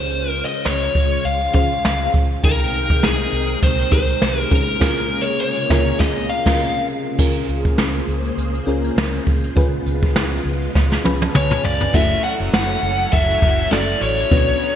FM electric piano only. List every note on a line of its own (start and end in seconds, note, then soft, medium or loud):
0.00 0.87 C#4 medium
0.00 0.87 F4 medium
0.00 0.87 G#4 medium
0.00 0.87 C5 medium
1.54 2.37 C#4 medium
1.54 2.37 F4 medium
1.54 2.38 G#4 medium
1.54 2.38 C5 medium
2.43 3.54 D#4 medium
2.43 3.54 G#4 medium
2.43 3.55 A#4 medium
2.43 3.54 G5 medium
3.91 4.51 D#4 medium
3.91 4.51 G4 medium
3.91 4.50 G#4 medium
3.91 4.50 A#4 medium
4.50 4.79 C#4 medium
4.50 4.79 F4 medium
4.50 4.80 G#4 medium
4.50 4.80 A#4 medium
4.80 5.01 C#4 medium
4.80 5.02 F4 loud
4.80 5.02 G#4 loud
4.80 5.02 A#4 loud
5.70 5.91 C#4 loud
5.70 5.91 F4 loud
5.70 5.91 G#4 loud
5.70 5.92 A#4 loud
5.99 6.20 C#4 medium
5.99 6.21 F4 loud
5.99 6.21 G#4 loud
5.99 6.21 A#4 loud
6.45 6.65 C#4 loud
6.45 6.66 F4 medium
6.45 6.66 G#4 medium
6.45 6.66 A#4 loud
7.18 8.29 C#4 medium
7.18 8.29 F4 medium
7.18 8.30 G#4 medium
7.18 8.30 A#4 medium
8.67 9.50 C#4 medium
8.67 9.50 F4 medium
8.67 9.51 G#4 medium
8.67 9.51 A#4 medium
9.56 10.67 C#4 medium
9.56 10.67 F4 medium
9.56 10.67 G#4 medium
9.56 10.68 B4 loud
11.04 11.88 C#4 medium
11.04 11.88 F4 medium
11.04 11.88 G#4 medium
11.04 11.88 B4 medium
11.04 11.20 B5 medium
11.22 11.34 A5 medium
11.34 11.62 G#5 medium
11.64 11.92 F5 medium
11.93 13.04 A3 medium
11.93 13.05 C#4 medium
11.93 13.05 E4 medium
11.93 13.05 F#4 medium
11.93 13.05 A4 medium
13.71 14.27 A3 medium
13.71 14.27 C#4 medium
13.71 14.27 E4 medium
13.71 14.28 F#4 medium
13.71 14.28 A4 medium
14.31 14.76 B3 medium
14.31 14.76 C#4 medium
14.31 14.76 D4 medium
14.31 14.76 F#4 medium
14.31 14.76 B4 medium